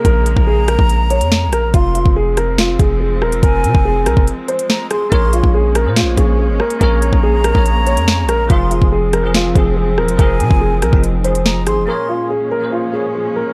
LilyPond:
<<
  \new Staff \with { instrumentName = "Flute" } { \time 4/4 \key bes \minor \tempo 4 = 142 bes''1 | c'''4 r2. | aes''2 r4 bes''8 c'''8 | c'''4 r2. |
bes''1 | c'''4 r2. | aes''2 r4 bes''8 c'''8 | c'''4 r2. | }
  \new Staff \with { instrumentName = "Grand piano" } { \time 4/4 \key bes \minor bes'4 aes'8 bes'8 r8 des''4 bes'8 | f'8 f'8 aes'8 bes'8 f'8 aes'8 aes'8 bes'8 | bes'4 aes'8 bes'8 r8 c''4 aes'8 | bes'8 f'8 aes'8 bes'8 f'8 aes'8 aes'8 bes'8 |
bes'4 aes'8 bes'8 r8 des''4 bes'8 | f'8 f'8 aes'8 bes'8 f'8 aes'8 aes'8 bes'8 | bes'4 aes'8 bes'8 r8 c''4 aes'8 | bes'8 f'8 aes'8 bes'8 f'8 aes'8 aes'8 bes'8 | }
  \new Staff \with { instrumentName = "Tine electric piano" } { \time 4/4 \key bes \minor r1 | r1 | r1 | <bes aes' des''>4~ <bes aes' des''>16 r8 <bes aes' c''>8 r16 <bes aes' des''>4 r8 |
<bes aes' des''>4~ <bes aes' des''>16 r8 <bes aes' des''>8 r16 <bes aes' des''>4 r8 | <f c' aes'>4~ <f c' aes'>16 r8 <f c' aes'>8 r16 <f c' aes'>4 r8 | <f c' aes'>4~ <f c' aes'>16 r8 <f c' ees'>8 r16 <f c' aes'>4 r8 | <bes aes' des''>4~ <bes aes' des''>16 r8 <bes aes' c''>8 r16 <bes aes' des''>4 r8 | }
  \new Staff \with { instrumentName = "String section" } { \clef bass \time 4/4 \key bes \minor <des aes bes>1 | <f aes c'>1~ | <f aes c'>1 | <bes des'>1~ |
<bes des'>1 | <f c'>1~ | <f c'>1 | <bes, f aes des'>1 | }
  \new Staff \with { instrumentName = "808-style bass" } { \clef bass \time 4/4 \key bes \minor bes,,8. bes,,4 bes,,4 f,8~ f,32 bes,,8~ bes,,32 | f,,8. f,,4.~ f,,16 f,,4 ees,,16 f,,16 | f,,8 c16 f,,8. c,16 f,,16 r2 | bes,,8. bes,,4 bes,16. bes,,16. bes,,8. aes,,16 r8 |
bes,,8. bes,,4 bes,,4 f,8~ f,32 bes,,8~ bes,,32 | f,,8. f,,4.~ f,,16 f,,4 ees,,16 f,,16 | f,,8 c16 f,,8. c,16 f,,4.~ f,,16 aes,,16 f,,16 | r1 | }
  \new DrumStaff \with { instrumentName = "Drums" } \drummode { \time 4/4 <hh bd>8 hh16 bd16 r8 <hh ss>16 bd16 hh8 hh16 hh16 sn8 <hh ss>8 | <hh bd>8 hh16 bd16 r8 <hh ss>8 <hh sn>8 <hh bd>8 r8 ss16 hh16 | <hh bd>8 hh16 bd16 r8 <hh ss>16 bd16 hh8 hh16 hh16 sn8 <hh ss>8 | <hh bd>8 hh16 bd16 r8 <hh ss>8 <hh sn>8 <hh bd>8 r8 ss16 hh16 |
<hh bd>8 hh16 bd16 r8 <hh ss>16 bd16 hh8 hh16 hh16 sn8 <hh ss>8 | <hh bd>8 hh16 bd16 r8 <hh ss>8 <hh sn>8 <hh bd>8 r8 ss16 hh16 | <hh bd>8 hh16 bd16 r8 <hh ss>16 bd16 hh8 hh16 hh16 sn8 <hh ss>8 | r4 r4 r4 r4 | }
>>